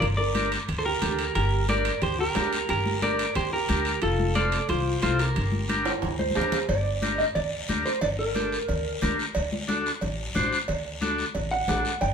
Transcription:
0.00 upright bass G1, clean electric guitar A#4 D5, low conga, high timbale, long guiro
0.17 clean electric guitar A#4 D5
0.35 transistor combo organ D4 G4 A#4, high conga, high timbale, short guiro
0.52 high timbale, short guiro
0.68 upright bass D2, low conga, high timbale, long guiro
0.78 clean electric guitar A4 C5
0.85 clean electric guitar G4 A#4
1.02 upright bass D2, transistor combo organ D4 G4 A4, high conga, low conga, high timbale, short guiro
1.19 high timbale, short guiro
1.35 upright bass G1, clean electric guitar G4 A#4, high timbale, long guiro
1.69 transistor combo organ D4 G4 A#4, clean electric guitar A#4 D5, high conga, high timbale, short guiro
1.85 high timbale, short guiro
2.02 upright bass D2, clean electric guitar G4 C5, low conga, high timbale, long guiro
2.19 clean electric guitar G4 A#4
2.35 upright bass D2, transistor combo organ D4 G4 A#4, high conga, high timbale, low timbale, short guiro
2.52 high timbale, short guiro
2.69 upright bass G1, clean electric guitar G4 A#4, low conga, high timbale, long guiro
2.86 high conga
3.02 transistor combo organ D4 G4 A#4, clean electric guitar A#4 D5, high conga, high timbale, short guiro
3.19 high timbale, short guiro
3.35 upright bass D2, clean electric guitar G4 C5, low conga, high timbale, long guiro
3.53 clean electric guitar G4 A#4
3.69 upright bass D2, transistor combo organ D4 G4 A#4, high conga, high timbale, short guiro
3.85 high timbale, short guiro
4.02 upright bass F1, clean electric guitar F4 A4, high timbale, long guiro
4.19 high conga
4.35 transistor combo organ C4 F4 A4, clean electric guitar A4 D5, high conga, high timbale, short guiro
4.52 high timbale, short guiro
4.69 upright bass C2, clean electric guitar F4 C5, low conga, high timbale, long guiro
5.02 upright bass C2, transistor combo organ C4 F4 A4, clean electric guitar F4 C5, high conga, high timbale, short guiro
5.19 clean electric guitar G4 A#4, high timbale, short guiro
5.36 upright bass G1, low conga, high timbale, long guiro
5.52 high conga
5.69 transistor combo organ D4 G4 A#4, high conga, high timbale, short guiro
5.86 high timbale, short guiro
6.02 upright bass D2, low conga, high timbale, long guiro
6.19 clean electric guitar C5, high conga
6.31 high conga
6.35 upright bass D2, transistor combo organ D4 G4 A#4, low timbale, short guiro
6.41 low conga
6.52 low conga, low timbale, short guiro
6.69 upright bass G1, clean electric guitar D5, cowbell, long guiro
7.02 transistor combo organ D4 G4 A#4, cowbell, high conga, short guiro
7.18 clean electric guitar D#5, short guiro
7.35 upright bass D2, clean electric guitar D5, cowbell, low conga, long guiro
7.68 upright bass D2, transistor combo organ D4 G4 A#4, cowbell, high conga, short guiro
7.86 clean electric guitar C5, short guiro
8.01 upright bass G1, clean electric guitar D5, cowbell, low conga, long guiro
8.19 clean electric guitar A#4
8.35 transistor combo organ D4 G4 A4, cowbell, high conga, short guiro
8.52 short guiro
8.69 upright bass D2, cowbell, low conga, long guiro
9.02 upright bass D2, transistor combo organ D4 G4 A#4, cowbell, high conga, low conga, short guiro
9.19 short guiro
9.35 upright bass D2, cowbell, long guiro
9.52 high conga
9.68 transistor combo organ D4 F#4 A4, cowbell, high conga, short guiro
9.86 short guiro
10.01 upright bass A1, cowbell, low conga, long guiro
10.35 upright bass A1, transistor combo organ D4 F#4 C5, cowbell, high conga, short guiro
10.53 short guiro
10.68 upright bass D2, cowbell, low conga, long guiro
11.01 transistor combo organ D4 F#4 A4, cowbell, high conga, short guiro
11.18 short guiro
11.35 upright bass A1, cowbell, low conga, long guiro
11.51 clean electric guitar F#5
11.68 upright bass A1, transistor combo organ D4 F#4 A4, cowbell, high conga, low conga, low timbale, short guiro
11.85 short guiro
12.01 upright bass G1, clean electric guitar G5, cowbell, long guiro

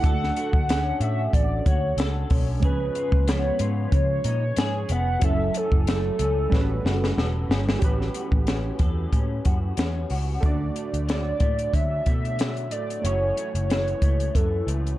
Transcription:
Already playing: clean electric guitar E4 G4, soft synth lead F#5
0.01 picked electric bass D2, synth keys A3 D4 F#4, kick, closed hi-hat
0.05 clean electric guitar A4, synth keys A4
0.23 snare
0.36 clean electric guitar F#4, closed hi-hat
0.53 picked electric bass D2, kick
0.69 clean electric guitar C#4, snare, closed hi-hat
1.00 picked electric bass A2, clean electric guitar F#4, soft synth lead E5, closed hi-hat
1.33 picked electric bass A1, soft synth lead D5, kick, closed hi-hat
1.66 picked electric bass D2, clean electric guitar F#4, soft synth lead C#5, kick, closed hi-hat
1.97 picked electric bass C#2, clean electric guitar A4, snare, closed hi-hat
2.30 picked electric bass B1, clean electric guitar C#4, kick, open hi-hat
2.60 picked electric bass C#2, clean electric guitar C#3, synth keys F3 G#3 C#4, soft synth lead B4, kick, closed hi-hat
2.64 clean electric guitar G#4, synth keys B4
2.95 clean electric guitar F4, closed hi-hat
3.12 picked electric bass C#2, kick
3.28 clean electric guitar B3, soft synth lead C#5, snare, closed hi-hat
3.59 picked electric bass G#2, clean electric guitar F4, closed hi-hat
3.92 picked electric bass C#3, soft synth lead C#5, kick, closed hi-hat
4.24 picked electric bass A#2, clean electric guitar D#4, closed hi-hat
4.56 picked electric bass G#2, clean electric guitar G#4, snare, closed hi-hat
4.89 picked electric bass F1, clean electric guitar B3, soft synth lead F#5, closed hi-hat
5.19 picked electric bass F#1, clean electric guitar F#2, synth keys F#3 C#4 E4, kick, closed hi-hat
5.24 clean electric guitar A4, synth keys A4, soft synth lead E5
5.54 clean electric guitar C#4, soft synth lead A4, closed hi-hat
5.71 picked electric bass F#1, kick
5.87 clean electric guitar A3, snare, closed hi-hat
6.19 picked electric bass C#2, clean electric guitar C#4, closed hi-hat
6.49 picked electric bass A1, clean electric guitar A2, synth keys G3 C#4 F#4, kick, snare
6.55 synth keys B4
6.85 picked electric bass F#1, clean electric guitar F#4, snare
7.04 snare
7.17 picked electric bass E1, clean electric guitar A4, snare
7.50 picked electric bass G1, clean electric guitar C#4, snare
7.69 snare
7.79 picked electric bass A1, synth keys C#4 F#4 G4, kick, closed hi-hat
7.83 clean electric guitar A2 A4, synth keys B4
8.01 snare
8.14 clean electric guitar F#4, closed hi-hat
8.32 picked electric bass A1, kick
8.47 clean electric guitar C#4, snare, closed hi-hat
8.79 picked electric bass E2, clean electric guitar A4, kick, closed hi-hat
9.12 picked electric bass A2, clean electric guitar C#4, kick, closed hi-hat
9.45 picked electric bass F#2, clean electric guitar F#4, kick, closed hi-hat
9.77 picked electric bass E2, clean electric guitar C#4, snare, closed hi-hat
10.10 picked electric bass C#2, clean electric guitar F#4, open hi-hat
10.41 picked electric bass D2, synth keys A3 D4 F#4, kick, closed hi-hat
10.46 synth keys D5
10.75 clean electric guitar A3, closed hi-hat
10.94 picked electric bass D2, closed hi-hat
11.08 clean electric guitar F#3, soft synth lead D5, snare, closed hi-hat
11.40 picked electric bass A2, clean electric guitar A3, kick, closed hi-hat
11.59 closed hi-hat
11.74 picked electric bass D3, clean electric guitar F#3, soft synth lead E5, kick, closed hi-hat
12.06 picked electric bass B2, clean electric guitar A3, kick, closed hi-hat
12.25 closed hi-hat
12.39 clean electric guitar F#3, snare, closed hi-hat
12.57 closed hi-hat
12.71 picked electric bass A2, clean electric guitar A3, soft synth lead D5, closed hi-hat
12.90 closed hi-hat
13.02 picked electric bass F#1, clean electric guitar F#2 C#4, synth keys A3 E4 F#4, soft synth lead C#5, closed hi-hat
13.06 synth keys C#5
13.37 clean electric guitar A3, closed hi-hat
13.55 picked electric bass F#1, closed hi-hat
13.69 clean electric guitar E3, soft synth lead C#5, snare, closed hi-hat
13.88 closed hi-hat
14.02 picked electric bass C#2, clean electric guitar A3, kick, closed hi-hat
14.20 closed hi-hat
14.35 picked electric bass F#2, clean electric guitar E3, soft synth lead A4, kick, closed hi-hat
14.67 picked electric bass C#2, clean electric guitar A3, closed hi-hat
14.87 closed hi-hat

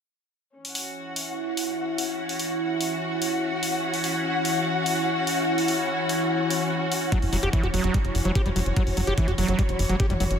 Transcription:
0.55 ambient pad E3 E4, string section C#4
0.65 open hi-hat
0.69 string section F#5
0.75 open hi-hat
0.79 string section F#4
1.16 open hi-hat
1.57 open hi-hat
1.98 open hi-hat
2.29 open hi-hat
2.39 open hi-hat
2.81 open hi-hat
3.22 open hi-hat
3.63 open hi-hat
3.94 open hi-hat
4.04 open hi-hat
4.45 open hi-hat
4.86 open hi-hat
5.27 open hi-hat
5.58 open hi-hat
5.68 open hi-hat
6.09 open hi-hat
6.50 open hi-hat
6.92 open hi-hat
7.12 acid bass F#3, ambient pad F#4, kick, closed hi-hat
7.22 analog synth bass F#1, open hi-hat
7.27 string section C#5
7.33 analog synth bass F#1, acid bass F#3, open hi-hat
7.43 analog synth bass F#1, acid bass G4, closed hi-hat
7.53 acid bass E3, kick, closed hi-hat
7.63 analog synth bass F#1, acid bass F#4, closed hi-hat
7.74 analog synth bass F#1, acid bass F#3, open hi-hat
7.84 analog synth bass F#1, acid bass F#3, closed hi-hat
7.94 acid bass G3, kick, closed hi-hat
8.05 analog synth bass F#1, closed hi-hat
8.15 analog synth bass F#1, open hi-hat
8.25 analog synth bass F#1, acid bass F#3, closed hi-hat
8.35 acid bass G4, kick, closed hi-hat
8.46 analog synth bass F#1, acid bass G3, closed hi-hat
8.56 analog synth bass F#1, acid bass F#3, open hi-hat
8.66 analog synth bass F#1, closed hi-hat
8.76 acid bass F#3, kick, closed hi-hat
8.87 analog synth bass F#1, open hi-hat
8.97 analog synth bass F#1, acid bass F#3, open hi-hat
9.07 analog synth bass F#1, acid bass G4, closed hi-hat
9.18 acid bass E3, kick, closed hi-hat
9.28 analog synth bass F#1, acid bass F#4, closed hi-hat
9.38 analog synth bass F#1, acid bass F#3, open hi-hat
9.48 analog synth bass F#1, acid bass F#3, closed hi-hat
9.59 acid bass G3, kick, closed hi-hat
9.69 analog synth bass F#1, closed hi-hat
9.79 analog synth bass F#1, open hi-hat
9.89 analog synth bass F#1, acid bass F#3, closed hi-hat
10.00 acid bass G4, kick, closed hi-hat
10.10 analog synth bass F#1, acid bass G3, closed hi-hat
10.20 analog synth bass F#1, acid bass F#3, open hi-hat
10.31 analog synth bass F#1, closed hi-hat

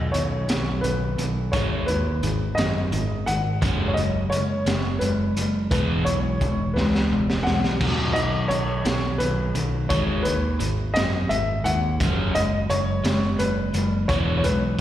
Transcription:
Already playing: picked electric bass B1, overdriven electric guitar B2 D#3
0.12 picked electric bass B1, overdriven electric guitar B2 D#3, upright piano C#5, closed hi-hat
0.48 picked electric bass B1, overdriven electric guitar B2 D#3, snare, closed hi-hat
0.81 picked electric bass B1, overdriven electric guitar B2 D#3, upright piano B4, closed hi-hat
1.18 picked electric bass B1, overdriven electric guitar B2 D#3, closed hi-hat
1.52 picked electric bass G#1, overdriven electric guitar G#2 D#3 G#3, upright piano C#5, kick, closed hi-hat
1.86 picked electric bass D#2, overdriven electric guitar G#2 D#3, upright piano B4, closed hi-hat
2.23 picked electric bass G#1, overdriven electric guitar G#2 D#3, closed hi-hat
2.55 picked electric bass F#2, overdriven electric guitar G#2, upright piano D#5, closed hi-hat
2.59 overdriven electric guitar D#3, snare
2.92 picked electric bass G#1, overdriven electric guitar G#2 D#3, closed hi-hat
3.26 picked electric bass G#1, overdriven electric guitar G#2 D#3, upright piano F#5, closed hi-hat
3.62 picked electric bass F#1, overdriven electric guitar F#3 G#3 C#4, kick, closed hi-hat
3.88 upright piano C#5
3.94 picked electric bass F#1, overdriven electric guitar F#3 G#3, upright piano D#5, closed hi-hat
4.30 picked electric bass F#1, overdriven electric guitar F#3 G#3, upright piano C#5, closed hi-hat
4.66 picked electric bass F#1, overdriven electric guitar F#3 G#3, snare, closed hi-hat
4.99 picked electric bass F#1, overdriven electric guitar F#3 G#3, upright piano B4, closed hi-hat
5.37 picked electric bass F#1, overdriven electric guitar F#3 G#3, closed hi-hat
5.71 picked electric bass E1, overdriven electric guitar E3 G#3 B3, upright piano B4, kick, closed hi-hat
6.05 picked electric bass B1, overdriven electric guitar E3 G#3, upright piano C#5, closed hi-hat
6.41 picked electric bass E1, overdriven electric guitar E3 G#3, kick, closed hi-hat
6.74 picked electric bass C#2, overdriven electric guitar E3 G#3, upright piano B4, snare
6.95 snare
7.11 picked electric bass E1, overdriven electric guitar E3 G#3
7.30 snare
7.43 picked electric bass B1, overdriven electric guitar E3 G#3, upright piano F#5, snare
7.64 snare
7.80 picked electric bass B1, overdriven electric guitar B2 D#3 F#3, kick, crash
8.13 picked electric bass B1, overdriven electric guitar B2 D#3, upright piano D#5, closed hi-hat
8.48 picked electric bass B1, overdriven electric guitar B2 D#3, upright piano C#5, closed hi-hat
8.85 picked electric bass B1, overdriven electric guitar B2 D#3, snare, closed hi-hat
9.18 picked electric bass B1, overdriven electric guitar B2 D#3, upright piano B4, closed hi-hat
9.55 picked electric bass B1, overdriven electric guitar B2 D#3, closed hi-hat
9.89 picked electric bass G#1, overdriven electric guitar G#2 D#3 G#3, upright piano C#5, kick, closed hi-hat
10.23 picked electric bass D#2, overdriven electric guitar G#2 D#3, upright piano B4, closed hi-hat
10.59 picked electric bass G#1, overdriven electric guitar G#2 D#3, closed hi-hat
10.94 picked electric bass F#2, overdriven electric guitar G#2 D#3, upright piano D#5, snare, closed hi-hat
11.29 picked electric bass G#1, overdriven electric guitar G#2 D#3, upright piano E5, closed hi-hat
11.64 picked electric bass D#2, overdriven electric guitar G#2 D#3, upright piano F#5, closed hi-hat
12.00 picked electric bass F#1, overdriven electric guitar F#3 G#3 C#4, kick, closed hi-hat
12.34 picked electric bass F#1, overdriven electric guitar F#3 G#3, upright piano D#5, closed hi-hat
12.69 picked electric bass F#1, overdriven electric guitar F#3 G#3, upright piano C#5, closed hi-hat
13.04 picked electric bass F#1, overdriven electric guitar F#3 G#3, snare, closed hi-hat
13.38 picked electric bass F#1, overdriven electric guitar F#3 G#3, upright piano B4, closed hi-hat
13.73 picked electric bass F#1, overdriven electric guitar F#3 G#3, closed hi-hat
14.08 picked electric bass E1, overdriven electric guitar E3 G#3 B3, upright piano C#5, kick, closed hi-hat
14.37 upright piano C#5
14.43 picked electric bass B1, overdriven electric guitar E3 G#3, upright piano B4, closed hi-hat

